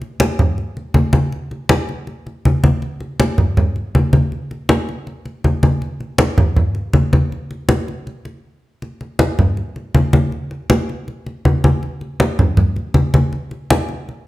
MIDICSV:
0, 0, Header, 1, 2, 480
1, 0, Start_track
1, 0, Tempo, 375000
1, 1687, Time_signature, 4, 2, 24, 8
1, 18271, End_track
2, 0, Start_track
2, 0, Title_t, "Drums"
2, 20, Note_on_c, 9, 63, 35
2, 148, Note_off_c, 9, 63, 0
2, 255, Note_on_c, 9, 63, 101
2, 383, Note_off_c, 9, 63, 0
2, 501, Note_on_c, 9, 63, 35
2, 501, Note_on_c, 9, 64, 79
2, 629, Note_off_c, 9, 63, 0
2, 629, Note_off_c, 9, 64, 0
2, 742, Note_on_c, 9, 63, 30
2, 870, Note_off_c, 9, 63, 0
2, 983, Note_on_c, 9, 63, 39
2, 1111, Note_off_c, 9, 63, 0
2, 1207, Note_on_c, 9, 63, 92
2, 1335, Note_off_c, 9, 63, 0
2, 1444, Note_on_c, 9, 63, 87
2, 1572, Note_off_c, 9, 63, 0
2, 1695, Note_on_c, 9, 63, 39
2, 1823, Note_off_c, 9, 63, 0
2, 1936, Note_on_c, 9, 63, 39
2, 2064, Note_off_c, 9, 63, 0
2, 2167, Note_on_c, 9, 63, 100
2, 2295, Note_off_c, 9, 63, 0
2, 2417, Note_on_c, 9, 63, 34
2, 2545, Note_off_c, 9, 63, 0
2, 2652, Note_on_c, 9, 63, 32
2, 2780, Note_off_c, 9, 63, 0
2, 2899, Note_on_c, 9, 63, 36
2, 3027, Note_off_c, 9, 63, 0
2, 3140, Note_on_c, 9, 63, 85
2, 3268, Note_off_c, 9, 63, 0
2, 3374, Note_on_c, 9, 63, 91
2, 3502, Note_off_c, 9, 63, 0
2, 3612, Note_on_c, 9, 63, 34
2, 3740, Note_off_c, 9, 63, 0
2, 3846, Note_on_c, 9, 63, 38
2, 3974, Note_off_c, 9, 63, 0
2, 4091, Note_on_c, 9, 63, 94
2, 4219, Note_off_c, 9, 63, 0
2, 4327, Note_on_c, 9, 63, 34
2, 4327, Note_on_c, 9, 64, 76
2, 4455, Note_off_c, 9, 63, 0
2, 4455, Note_off_c, 9, 64, 0
2, 4572, Note_on_c, 9, 63, 33
2, 4572, Note_on_c, 9, 64, 70
2, 4700, Note_off_c, 9, 63, 0
2, 4700, Note_off_c, 9, 64, 0
2, 4811, Note_on_c, 9, 63, 34
2, 4939, Note_off_c, 9, 63, 0
2, 5055, Note_on_c, 9, 63, 82
2, 5183, Note_off_c, 9, 63, 0
2, 5286, Note_on_c, 9, 63, 94
2, 5414, Note_off_c, 9, 63, 0
2, 5530, Note_on_c, 9, 63, 35
2, 5658, Note_off_c, 9, 63, 0
2, 5773, Note_on_c, 9, 63, 36
2, 5901, Note_off_c, 9, 63, 0
2, 6004, Note_on_c, 9, 63, 93
2, 6132, Note_off_c, 9, 63, 0
2, 6256, Note_on_c, 9, 63, 31
2, 6384, Note_off_c, 9, 63, 0
2, 6488, Note_on_c, 9, 63, 35
2, 6616, Note_off_c, 9, 63, 0
2, 6726, Note_on_c, 9, 63, 36
2, 6854, Note_off_c, 9, 63, 0
2, 6968, Note_on_c, 9, 63, 82
2, 7096, Note_off_c, 9, 63, 0
2, 7206, Note_on_c, 9, 63, 89
2, 7334, Note_off_c, 9, 63, 0
2, 7447, Note_on_c, 9, 63, 38
2, 7575, Note_off_c, 9, 63, 0
2, 7685, Note_on_c, 9, 63, 35
2, 7813, Note_off_c, 9, 63, 0
2, 7915, Note_on_c, 9, 63, 99
2, 8043, Note_off_c, 9, 63, 0
2, 8162, Note_on_c, 9, 63, 33
2, 8162, Note_on_c, 9, 64, 80
2, 8290, Note_off_c, 9, 63, 0
2, 8290, Note_off_c, 9, 64, 0
2, 8403, Note_on_c, 9, 63, 34
2, 8403, Note_on_c, 9, 64, 68
2, 8531, Note_off_c, 9, 63, 0
2, 8531, Note_off_c, 9, 64, 0
2, 8637, Note_on_c, 9, 63, 37
2, 8765, Note_off_c, 9, 63, 0
2, 8876, Note_on_c, 9, 63, 88
2, 9004, Note_off_c, 9, 63, 0
2, 9124, Note_on_c, 9, 63, 94
2, 9252, Note_off_c, 9, 63, 0
2, 9373, Note_on_c, 9, 63, 39
2, 9501, Note_off_c, 9, 63, 0
2, 9609, Note_on_c, 9, 63, 36
2, 9737, Note_off_c, 9, 63, 0
2, 9839, Note_on_c, 9, 63, 93
2, 9967, Note_off_c, 9, 63, 0
2, 10090, Note_on_c, 9, 63, 32
2, 10218, Note_off_c, 9, 63, 0
2, 10328, Note_on_c, 9, 63, 34
2, 10456, Note_off_c, 9, 63, 0
2, 10563, Note_on_c, 9, 63, 37
2, 10691, Note_off_c, 9, 63, 0
2, 11292, Note_on_c, 9, 63, 38
2, 11420, Note_off_c, 9, 63, 0
2, 11530, Note_on_c, 9, 63, 38
2, 11658, Note_off_c, 9, 63, 0
2, 11764, Note_on_c, 9, 63, 100
2, 11892, Note_off_c, 9, 63, 0
2, 12016, Note_on_c, 9, 63, 33
2, 12016, Note_on_c, 9, 64, 74
2, 12144, Note_off_c, 9, 63, 0
2, 12144, Note_off_c, 9, 64, 0
2, 12251, Note_on_c, 9, 63, 34
2, 12379, Note_off_c, 9, 63, 0
2, 12492, Note_on_c, 9, 63, 37
2, 12620, Note_off_c, 9, 63, 0
2, 12730, Note_on_c, 9, 63, 95
2, 12858, Note_off_c, 9, 63, 0
2, 12969, Note_on_c, 9, 63, 99
2, 13097, Note_off_c, 9, 63, 0
2, 13212, Note_on_c, 9, 63, 37
2, 13340, Note_off_c, 9, 63, 0
2, 13452, Note_on_c, 9, 63, 39
2, 13580, Note_off_c, 9, 63, 0
2, 13693, Note_on_c, 9, 63, 95
2, 13821, Note_off_c, 9, 63, 0
2, 13943, Note_on_c, 9, 63, 35
2, 14071, Note_off_c, 9, 63, 0
2, 14181, Note_on_c, 9, 63, 35
2, 14309, Note_off_c, 9, 63, 0
2, 14419, Note_on_c, 9, 63, 38
2, 14547, Note_off_c, 9, 63, 0
2, 14659, Note_on_c, 9, 63, 95
2, 14787, Note_off_c, 9, 63, 0
2, 14900, Note_on_c, 9, 63, 96
2, 15028, Note_off_c, 9, 63, 0
2, 15139, Note_on_c, 9, 63, 38
2, 15267, Note_off_c, 9, 63, 0
2, 15375, Note_on_c, 9, 63, 37
2, 15503, Note_off_c, 9, 63, 0
2, 15615, Note_on_c, 9, 63, 89
2, 15743, Note_off_c, 9, 63, 0
2, 15859, Note_on_c, 9, 63, 35
2, 15859, Note_on_c, 9, 64, 82
2, 15987, Note_off_c, 9, 63, 0
2, 15987, Note_off_c, 9, 64, 0
2, 16092, Note_on_c, 9, 63, 36
2, 16092, Note_on_c, 9, 64, 75
2, 16220, Note_off_c, 9, 63, 0
2, 16220, Note_off_c, 9, 64, 0
2, 16335, Note_on_c, 9, 63, 39
2, 16463, Note_off_c, 9, 63, 0
2, 16567, Note_on_c, 9, 63, 87
2, 16695, Note_off_c, 9, 63, 0
2, 16817, Note_on_c, 9, 63, 93
2, 16945, Note_off_c, 9, 63, 0
2, 17056, Note_on_c, 9, 63, 40
2, 17184, Note_off_c, 9, 63, 0
2, 17295, Note_on_c, 9, 63, 38
2, 17423, Note_off_c, 9, 63, 0
2, 17542, Note_on_c, 9, 63, 98
2, 17670, Note_off_c, 9, 63, 0
2, 17775, Note_on_c, 9, 63, 31
2, 17903, Note_off_c, 9, 63, 0
2, 18030, Note_on_c, 9, 63, 31
2, 18158, Note_off_c, 9, 63, 0
2, 18271, End_track
0, 0, End_of_file